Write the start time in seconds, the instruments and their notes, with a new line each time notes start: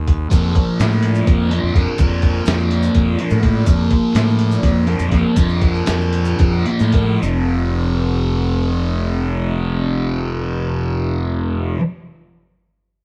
Already playing: fingered electric bass D#2
0.07 kick, closed hi-hat
0.31 fingered electric bass F2, distorted electric guitar A#2 F3 A#3, kick, closed hi-hat, maracas
0.55 kick, closed hi-hat
0.80 fingered electric bass A2, snare, closed hi-hat, maracas
0.92 maracas
1.03 closed hi-hat
1.15 maracas
1.27 fingered electric bass F2, kick, closed hi-hat
1.51 distorted electric guitar A#2 F3 A#3, closed hi-hat
1.63 fingered electric bass F2
1.74 fingered electric bass F2, distorted electric guitar A#2 F3 A#3, kick, closed hi-hat
1.98 fingered electric bass F2, distorted electric guitar A#2 F3 A#3, kick, closed hi-hat, maracas
2.22 kick, closed hi-hat
2.45 fingered electric bass F2, snare, closed hi-hat, maracas
2.59 maracas
2.71 closed hi-hat
2.83 maracas
2.95 fingered electric bass F2, kick, closed hi-hat
3.18 distorted electric guitar A#2 F3 A#3, closed hi-hat
3.30 fingered electric bass A2, maracas
3.41 distorted electric guitar A#2 F3 A#3, kick, closed hi-hat
3.66 fingered electric bass F2, distorted electric guitar A#2 F3 A#3, kick, closed hi-hat, maracas
3.91 kick, closed hi-hat
4.15 fingered electric bass A2, snare, closed hi-hat, maracas
4.29 maracas
4.39 closed hi-hat
4.51 maracas
4.63 fingered electric bass F2, kick, snare, closed hi-hat
4.87 distorted electric guitar A#2 F3 A#3, closed hi-hat
4.99 fingered electric bass F2, maracas
5.10 fingered electric bass F2, distorted electric guitar A#2 F3 A#3, kick, snare, closed hi-hat
5.36 fingered electric bass F2, distorted electric guitar A#2 F3 A#3, kick, closed hi-hat, maracas
5.49 maracas
5.61 kick, closed hi-hat
5.75 maracas
5.86 fingered electric bass F2, snare, closed hi-hat, maracas
6.00 maracas
6.13 closed hi-hat
6.25 maracas
6.39 fingered electric bass F2, kick, closed hi-hat, maracas
6.66 distorted electric guitar A#2 F3 A#3, closed hi-hat, maracas
6.79 fingered electric bass A2, maracas
6.92 distorted electric guitar F3 A#3, kick, closed hi-hat, maracas
6.96 distorted electric guitar A#2
7.21 fingered electric bass F1, distorted electric guitar F2 C3, maracas
7.25 distorted electric guitar F3